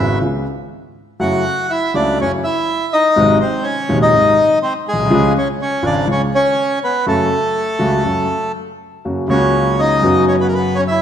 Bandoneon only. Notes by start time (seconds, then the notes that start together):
Already playing: E4 E5
1.20 F#4 F#5
1.70 E4 E5
1.95 D4 D5
2.21 C#4 C#5
2.44 E4 E5
2.93 D#4 D#5
3.41 C4 C5
3.63 C#4 C#5
4.02 D#4 D#5
4.62 C4 C5
4.88 G#3 G#4
5.38 C#4 C#5
5.62 C#4 C#5
5.86 D4 D5
6.11 C#4 C#5
6.34 C#4 C#5
6.84 B3 B4
7.07 A3 A4
9.30 C#4 C#5
9.79 D#4 D#5
10.28 C#4 C#5
10.40 B3 B4
10.48 A#4
10.54 B3 B4
10.75 C#4 C#5
10.88 E4 E5